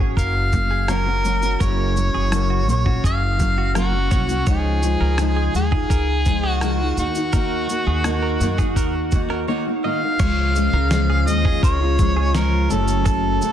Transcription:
Already playing: upright bass G#1
0.00 steel-string acoustic guitar F#3 A#3 C#4 F#4, clean electric guitar G#4
0.17 upright bass F#1, clean electric guitar A#4, harmonica F5, kick, shaker
0.52 steel-string acoustic guitar F#3 A#3 C#4 F#4, kick, shaker
0.71 clean electric guitar G#4
0.88 steel-string acoustic guitar F#2 C#3 F#3 A#3 C#4 F#4, harmonica A#4, clean electric guitar C#5, cross-stick, shaker
1.06 steel-string acoustic guitar F#3 A#3 C#4 F#4
1.24 steel-string acoustic guitar F#3 A#3 C#4 F#4, shaker
1.42 steel-string acoustic guitar F#3 A#3 C#4 F#4, shaker
1.60 upright bass F#1, steel-string acoustic guitar F#2 C#3 F#3 A#3 C#4 F#4, clean electric guitar A#4, harmonica C#5, kick, shaker
1.95 steel-string acoustic guitar F#3 A#3 C#4 F#4, shaker
2.14 upright bass F#1, clean electric guitar G#4
2.31 steel-string acoustic guitar F#2 C#3 F#3 A#3 C#4 F#4, cross-stick, shaker
2.50 clean electric guitar F#4
2.67 upright bass A#1, steel-string acoustic guitar F#3 A#3 C#4 F#4, harmonica C#5, shaker
2.86 steel-string acoustic guitar F#3 A#3 C#4 F#4, clean electric guitar F#4, kick
3.04 upright bass F#1, clean electric guitar G#4, harmonica F5, kick, shaker
3.39 steel-string acoustic guitar F#3 A#3 C#4 F#4, kick, shaker
3.58 clean electric guitar F#4
3.74 steel-string acoustic guitar F#2 C#3 F#3 A#3 C#4 F#4, harmonica F#4, clean electric guitar A#4, cross-stick, shaker
3.92 steel-string acoustic guitar F#3 A#3 C#4 F#4
4.11 upright bass C2, steel-string acoustic guitar F#3 A#3 C#4 F#4, clean electric guitar C#5, kick, shaker
4.28 steel-string acoustic guitar F#3 A#3 C#4 F#4, shaker
4.46 upright bass C#2, steel-string acoustic guitar C#3 F3 G#3 D#4 F4, harmonica G#4, clean electric guitar C#5, kick, shaker
4.82 steel-string acoustic guitar F3 G#3 D#4 F4, shaker
5.01 upright bass C#2, clean electric guitar A#4
5.18 steel-string acoustic guitar C#3 F3 G#3 D#4 F4, cross-stick, shaker
5.36 clean electric guitar G#4
5.54 upright bass D#2, steel-string acoustic guitar F3 G#3 D#4 F4, harmonica G#4, shaker
5.72 steel-string acoustic guitar G#3 D#4 F4, clean electric guitar G#4, kick
5.90 upright bass C#2, clean electric guitar A#4, kick, shaker
6.25 steel-string acoustic guitar F3 G#3 D#4 F4, kick, shaker
6.44 clean electric guitar G#4
6.49 harmonica F#4
6.61 steel-string acoustic guitar C#3 F3 G#3 D#4 F4, clean electric guitar A#4, cross-stick, shaker
6.79 steel-string acoustic guitar G#3 D#4 F4
6.97 upright bass D#2, steel-string acoustic guitar D#3 A#3 D#4 F#4, harmonica F#4, shaker
7.14 steel-string acoustic guitar A#3 D#4 F#4, shaker
7.33 steel-string acoustic guitar D#3 A#3 D#4 F#4, clean electric guitar A#4, kick, shaker
7.68 steel-string acoustic guitar D#3 A#3 D#4 F#4, shaker
7.87 upright bass D#2, clean electric guitar G#4
8.04 steel-string acoustic guitar D#3 A#3 D#4 F#4, cross-stick, shaker
8.22 clean electric guitar A#4
8.40 upright bass F#2, steel-string acoustic guitar D#3 A#3 D#4 F#4, shaker
8.58 steel-string acoustic guitar A#3 D#4 F#4, clean electric guitar G#4, kick, shaker
8.76 upright bass D#2, clean electric guitar A#4, kick, shaker
9.11 steel-string acoustic guitar D#3 A#3 D#4 F#4, kick, shaker
9.30 clean electric guitar A#4, cross-stick
9.48 steel-string acoustic guitar D#3 A#3 D#4 F#4, clean electric guitar C#5
9.66 steel-string acoustic guitar A#3 D#4 F#4
9.84 steel-string acoustic guitar D#3 A#3 D#4 F#4, clean electric guitar D#5, harmonica F5
10.02 steel-string acoustic guitar A#3 D#4 F#4
10.19 upright bass C#2, steel-string acoustic guitar C#3 F3 G#3 C#4 F4, brass ensemble C#3 G#3 F4, clean electric guitar C#5, kick, crash, shaker
10.55 steel-string acoustic guitar F3 G#3 C#4 F4, shaker
10.73 upright bass C#2, steel-string acoustic guitar G#3 C#4 F4, clean electric guitar A#4
10.91 steel-string acoustic guitar C#3 F3 G#3 C#4 F4, snare, shaker
11.10 clean electric guitar G#4
11.27 upright bass D#2, steel-string acoustic guitar F3 G#3 C#4 F4, harmonica D#5, shaker
11.45 steel-string acoustic guitar G#3 C#4 F4, clean electric guitar G#4, kick
11.63 upright bass C#2, clean electric guitar A#4, harmonica C#5, kick, shaker
11.80 steel-string acoustic guitar G#3 C#4 F4
11.98 steel-string acoustic guitar F3 G#3 C#4 F4, kick, shaker
12.15 steel-string acoustic guitar G#3 C#4 F4, clean electric guitar G#4
12.33 steel-string acoustic guitar C#3 F3 G#3 C#4 F4, harmonica A#4, clean electric guitar C#5, snare, shaker
12.69 upright bass F#1, steel-string acoustic guitar F#2 C#3 F#3 A3 C#4 A4, brass ensemble A3 F#4, harmonica A4, shaker
12.88 shaker
13.05 clean electric guitar A4, harmonica A4, kick, shaker
13.41 steel-string acoustic guitar F#3 A3 C#4 A4, shaker

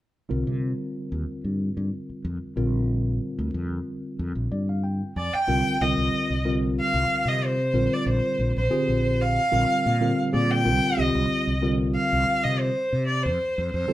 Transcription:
0.29 fretless electric bass C2, tine electric piano D3 G3 C4 F4 A#4
0.47 fretless electric bass C3
1.12 fretless electric bass D#2
1.44 fretless electric bass G2
1.77 fretless electric bass G2
2.10 muted fretless electric bass stroke
2.25 fretless electric bass F2
2.56 fretless electric bass A#1, tine electric piano D3 G3 C4 F4 A#4
3.39 fretless electric bass D2
3.54 fretless electric bass F2
4.19 fretless electric bass F2
4.35 fretless electric bass A#1
4.51 fretless electric bass G2, tine electric piano D5
4.69 tine electric piano F5
4.84 tine electric piano G5
5.16 fretless electric bass F2, violin D5, tine electric piano G#5
5.33 violin G5, muted fretless electric bass stroke
5.47 fretless electric bass C2, tine electric piano D3 G3 C4 F4 A#4
5.81 fretless electric bass C2, tine electric piano D3 G3 C4 F4 A#4, violin D#5
5.98 fretless electric bass C2
6.30 fretless electric bass C2
6.45 tine electric piano D3 G3 C4 F4 A#4
6.80 violin F5
6.94 fretless electric bass C2
7.09 muted fretless electric bass stroke
7.25 fretless electric bass C3, violin D#5
7.45 violin C5
7.74 fretless electric bass A#1, tine electric piano D3 G3 C4 F4 A#4
7.93 violin D5
8.06 fretless electric bass A#1, violin C5
8.39 fretless electric bass A#1
8.57 fretless electric bass A#1, violin C5
8.70 tine electric piano D3 C4 F4 G4 G#4
8.88 fretless electric bass A#1
9.22 violin F5
9.52 fretless electric bass A#1, tine electric piano D3 G3 C4 F4 A#4
9.86 fretless electric bass A#2
10.01 tine electric piano D3 G3 C4 F4 A#4
10.32 fretless electric bass A#2, tine electric piano D3 G3 C4 F4 G#4, violin D5
10.50 violin G5
10.65 fretless electric bass C2, tine electric piano D3 G3 C4 F4 A#4
10.97 fretless electric bass C2, tine electric piano D3 G3 C4 F4 G4, violin D#5
11.15 fretless electric bass C2
11.31 muted fretless electric bass stroke
11.47 fretless electric bass C2
11.62 tine electric piano D3 G3 C4 F4 A#4
11.95 violin F5
12.13 fretless electric bass C2
12.43 fretless electric bass C3, violin D#5
12.59 violin C5
12.93 fretless electric bass C3
13.07 violin D5
13.23 fretless electric bass F2, violin C5
13.58 fretless electric bass F2
13.72 fretless electric bass F2, violin C5
13.88 tine electric piano D3 G3 C4 F4 A4, muted fretless electric bass stroke

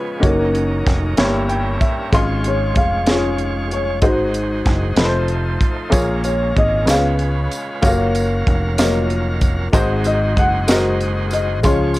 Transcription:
Already playing: grand piano C#3 G#3 C#4 F4 B4, tonewheel organ F3 B3 C#4 G#4, felt piano F4 G#4 B4
0.20 fingered electric bass F#1, grand piano A#3 D#4 F#4 C#5, kick, closed hi-hat
0.24 tonewheel organ F#3 C#4 D#4 A4, felt piano C#4 D#4 A#4
0.32 tonewheel organ A#4
0.55 closed hi-hat
0.86 fingered electric bass F1, kick, snare, closed hi-hat
1.17 fingered electric bass G1, grand piano G2 A#3 E4 G4 C#5, tonewheel organ G3 C#4 E4 A#4, snare, closed hi-hat
1.49 grand piano G5, closed hi-hat
1.81 grand piano E5, kick, closed hi-hat
2.12 fingered electric bass G#1, grand piano G#2 G#3 C#4 F4 C6, tonewheel organ G#3 C#4 F4 C#5, kick, closed hi-hat
2.44 felt piano C#5, closed hi-hat
2.75 fingered electric bass F1, felt piano F5, kick, closed hi-hat
3.07 grand piano G#3 C#4 D#4 G#4, felt piano C#5, snare, closed hi-hat
3.11 felt piano F4, grand piano F4
3.38 closed hi-hat
3.71 felt piano C#5, closed hi-hat
4.02 fingered electric bass G#1, grand piano G#2 G#3 D#4 F#4 C5, tonewheel organ G#3 D#4 F#4 C5, felt piano C5, kick, closed hi-hat
4.06 felt piano D#4 F#4
4.34 closed hi-hat
4.66 fingered electric bass F#1, kick, snare, closed hi-hat
4.96 fingered electric bass F1, grand piano F3 A3 D#4 B4, tonewheel organ F3 A3 D#4 C5, snare, closed hi-hat
5.05 grand piano C5
5.28 closed hi-hat
5.61 kick, closed hi-hat
5.90 fingered electric bass A#1, grand piano A#2 A#3 F4 G#4 C#5, tonewheel organ G#3 C4 F4 A#4, kick, closed hi-hat, tambourine
5.99 tonewheel organ C#4
6.24 felt piano C#5, closed hi-hat, tambourine
6.57 fingered electric bass G#1, felt piano D#5, kick, closed hi-hat
6.85 fingered electric bass C#2, grand piano C#3 B3 D#4 G#4 C#5, tonewheel organ G#3 C#4 F4 B4, snare, closed hi-hat, tambourine
6.90 grand piano F4, felt piano G#4 B4 F5
7.19 closed hi-hat
7.52 closed hi-hat, tambourine
7.81 fingered electric bass F#1, tonewheel organ F#3 C#4 A#4 F5, grand piano A#3 F4 F#4 C#5, kick, closed hi-hat, tambourine
7.86 felt piano A#4 C#5 F5
8.15 closed hi-hat, tambourine
8.47 fingered electric bass F1, kick, closed hi-hat
8.78 grand piano F#3 A#3 F4 D#5, felt piano F4 A#4 C#5, snare, closed hi-hat, tambourine
9.10 closed hi-hat
9.41 kick, closed hi-hat, tambourine
9.73 fingered electric bass G#1, grand piano G#2 G#3 D#4 F#4 C5, tonewheel organ G#3 D#4 F#4 C5, kick, closed hi-hat, tambourine
10.04 felt piano D#5, closed hi-hat, tambourine
10.37 fingered electric bass F#1, felt piano F#5, kick, closed hi-hat
10.68 grand piano G#3 D#4 F#4 A#4, felt piano F#4 C5 D#5, snare, closed hi-hat, tambourine
11.01 closed hi-hat
11.31 felt piano D#5, closed hi-hat, tambourine
11.63 fingered electric bass C#2, grand piano F3 G#3 C#4 F4 C6, tonewheel organ G#3 C#4 F4 C#5, felt piano F4 G#4 C#5, kick, closed hi-hat, tambourine
11.94 closed hi-hat, tambourine

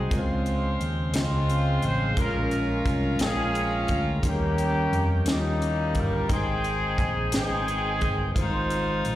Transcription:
Already playing: tine electric piano G#2 G#3 D#4 F#4 C5, tonewheel organ G#3 D#4 F#4 C5
0.10 fingered electric bass C#2, tine electric piano C#3 G#3 C4 F4 A#4, tonewheel organ C#3 G#3 D#4 C5, kick, closed hi-hat
0.14 horn section G#3 C4 F4
0.19 tonewheel organ F4, tine electric piano C5
0.46 closed hi-hat
0.80 fingered electric bass D#2, closed hi-hat
1.14 fingered electric bass C#2, tine electric piano C#3 G#3 F4 D#5, horn section G#3 C4 F4, snare, closed hi-hat
1.49 closed hi-hat
1.82 fingered electric bass A1, horn section C5, closed hi-hat
2.16 fingered electric bass A#1, tine electric piano A#2 G#3 C#4 F4 A#4, tonewheel organ G#3 C#4 F4 A4, horn section C#4 F4 A#4, kick, closed hi-hat
2.23 tonewheel organ A#4
2.51 closed hi-hat
2.85 fingered electric bass C2, kick, closed hi-hat
3.19 fingered electric bass A#1, tine electric piano G#3 C#4 F4 G5, horn section C#4 F4 G#4, snare, closed hi-hat
3.55 closed hi-hat
3.88 fingered electric bass D2, kick, closed hi-hat
4.22 fingered electric bass D#2, tonewheel organ D#3 A#3 C#4 F4, tine electric piano D#3 G3 C#4 D#4 G#4, horn section C#4, kick, closed hi-hat
4.26 horn section A#3 G4, tonewheel organ G4
4.31 tine electric piano A#4
4.58 closed hi-hat
4.92 fingered electric bass F2, closed hi-hat
5.26 fingered electric bass D#2, tine electric piano G3 C#4 D#4 E4, horn section G3 A#3 D#4, snare, closed hi-hat
5.34 tine electric piano F4
5.62 closed hi-hat
5.95 fingered electric bass G1, kick, closed hi-hat
5.99 horn section A#4
6.28 fingered electric bass G#1, tine electric piano G#2 G#3 D#4 A#4 G5, tonewheel organ D#3 G#3 C4 G5, horn section G#4, kick, closed hi-hat
6.32 horn section C4 D#4
6.38 tine electric piano C5
6.64 closed hi-hat
6.98 fingered electric bass A#1, kick, closed hi-hat
7.32 fingered electric bass G#1, tine electric piano G#3 D#4 B4 G5, horn section C4 D#4 G#4, snare, closed hi-hat
7.41 tine electric piano C5
7.68 closed hi-hat
8.01 fingered electric bass G1, kick, closed hi-hat
8.34 fingered electric bass G#1, tine electric piano G#2 G3 D#4 F4 C5, tonewheel organ D#3 G#3 C4 F4, kick, closed hi-hat
8.39 tine electric piano G#3, horn section D#4 F4 C5
8.70 closed hi-hat
9.04 fingered electric bass A#1, closed hi-hat

